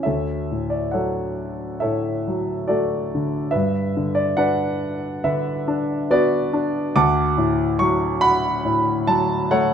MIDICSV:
0, 0, Header, 1, 2, 480
1, 0, Start_track
1, 0, Key_signature, 2, "major"
1, 0, Tempo, 882353
1, 27, Time_signature, 4, 2, 24, 8
1, 1467, Tempo, 852273
1, 5432, End_track
2, 0, Start_track
2, 0, Title_t, "Grand piano"
2, 0, Program_c, 0, 0
2, 0, Control_c, 0, 64, 127
2, 17, Note_on_c, 0, 76, 58
2, 26, Note_on_c, 0, 73, 37
2, 30, Note_on_c, 0, 69, 39
2, 34, Control_c, 0, 64, 0
2, 34, Note_on_c, 0, 38, 48
2, 129, Control_c, 0, 64, 127
2, 280, Note_on_c, 0, 45, 36
2, 380, Note_on_c, 0, 74, 50
2, 395, Note_off_c, 0, 76, 0
2, 497, Note_off_c, 0, 74, 0
2, 497, Note_on_c, 0, 78, 52
2, 502, Note_off_c, 0, 73, 0
2, 504, Note_off_c, 0, 69, 0
2, 510, Note_on_c, 0, 73, 39
2, 512, Note_on_c, 0, 69, 43
2, 514, Note_on_c, 0, 54, 42
2, 980, Note_on_c, 0, 76, 57
2, 981, Note_off_c, 0, 69, 0
2, 982, Note_off_c, 0, 73, 0
2, 989, Note_off_c, 0, 45, 0
2, 989, Note_on_c, 0, 69, 45
2, 990, Note_on_c, 0, 73, 42
2, 997, Note_on_c, 0, 45, 42
2, 998, Note_off_c, 0, 78, 0
2, 1229, Note_off_c, 0, 54, 0
2, 1238, Note_on_c, 0, 54, 44
2, 1454, Note_off_c, 0, 69, 0
2, 1455, Note_on_c, 0, 74, 61
2, 1462, Note_on_c, 0, 66, 45
2, 1462, Note_on_c, 0, 69, 47
2, 1470, Note_on_c, 0, 57, 46
2, 1477, Note_off_c, 0, 76, 0
2, 1720, Note_on_c, 0, 50, 47
2, 1800, Note_off_c, 0, 74, 0
2, 1920, Note_off_c, 0, 66, 0
2, 1921, Note_off_c, 0, 69, 0
2, 1923, Note_off_c, 0, 73, 0
2, 1925, Note_on_c, 0, 76, 71
2, 1927, Note_off_c, 0, 38, 0
2, 1927, Note_off_c, 0, 45, 0
2, 1928, Note_off_c, 0, 54, 0
2, 1932, Note_on_c, 0, 71, 51
2, 1933, Note_off_c, 0, 57, 0
2, 1944, Note_off_c, 0, 50, 0
2, 1949, Note_on_c, 0, 43, 55
2, 1954, Control_c, 0, 64, 0
2, 2040, Control_c, 0, 64, 127
2, 2182, Note_on_c, 0, 50, 49
2, 2284, Note_on_c, 0, 74, 70
2, 2297, Note_off_c, 0, 76, 0
2, 2400, Note_off_c, 0, 74, 0
2, 2408, Note_on_c, 0, 78, 77
2, 2410, Note_off_c, 0, 71, 0
2, 2413, Note_on_c, 0, 62, 52
2, 2418, Note_on_c, 0, 71, 55
2, 2420, Note_on_c, 0, 74, 53
2, 2892, Note_off_c, 0, 50, 0
2, 2896, Note_off_c, 0, 71, 0
2, 2899, Note_on_c, 0, 76, 71
2, 2900, Note_on_c, 0, 50, 49
2, 2904, Note_on_c, 0, 71, 58
2, 2915, Note_off_c, 0, 78, 0
2, 3138, Note_off_c, 0, 62, 0
2, 3146, Note_on_c, 0, 62, 54
2, 3371, Note_off_c, 0, 74, 0
2, 3387, Note_off_c, 0, 71, 0
2, 3387, Note_on_c, 0, 59, 55
2, 3389, Note_on_c, 0, 74, 86
2, 3393, Note_on_c, 0, 66, 58
2, 3395, Note_on_c, 0, 71, 57
2, 3404, Note_off_c, 0, 76, 0
2, 3620, Note_off_c, 0, 62, 0
2, 3628, Note_on_c, 0, 62, 54
2, 3724, Note_off_c, 0, 74, 0
2, 3842, Note_off_c, 0, 50, 0
2, 3845, Note_off_c, 0, 66, 0
2, 3846, Note_off_c, 0, 43, 0
2, 3846, Note_off_c, 0, 71, 0
2, 3849, Note_off_c, 0, 59, 0
2, 3859, Note_off_c, 0, 62, 0
2, 3866, Note_on_c, 0, 38, 65
2, 3866, Note_on_c, 0, 86, 100
2, 3869, Note_on_c, 0, 78, 74
2, 3870, Note_on_c, 0, 81, 68
2, 3873, Control_c, 0, 64, 0
2, 3986, Control_c, 0, 64, 127
2, 4102, Note_on_c, 0, 45, 56
2, 4336, Note_on_c, 0, 85, 91
2, 4340, Note_on_c, 0, 54, 59
2, 4356, Note_off_c, 0, 86, 0
2, 4568, Note_off_c, 0, 78, 0
2, 4572, Note_on_c, 0, 83, 105
2, 4577, Note_on_c, 0, 78, 74
2, 4585, Note_off_c, 0, 85, 0
2, 4799, Note_off_c, 0, 81, 0
2, 4812, Note_off_c, 0, 45, 0
2, 4820, Note_on_c, 0, 45, 50
2, 5035, Note_off_c, 0, 83, 0
2, 5054, Note_off_c, 0, 54, 0
2, 5059, Note_on_c, 0, 81, 88
2, 5062, Note_on_c, 0, 54, 62
2, 5295, Note_off_c, 0, 78, 0
2, 5304, Note_on_c, 0, 78, 85
2, 5305, Note_on_c, 0, 69, 62
2, 5306, Note_on_c, 0, 73, 69
2, 5308, Note_on_c, 0, 57, 61
2, 5310, Note_off_c, 0, 81, 0
2, 5432, Note_off_c, 0, 38, 0
2, 5432, Note_off_c, 0, 45, 0
2, 5432, Note_off_c, 0, 54, 0
2, 5432, Note_off_c, 0, 57, 0
2, 5432, Note_off_c, 0, 69, 0
2, 5432, Note_off_c, 0, 73, 0
2, 5432, Note_off_c, 0, 78, 0
2, 5432, End_track
0, 0, End_of_file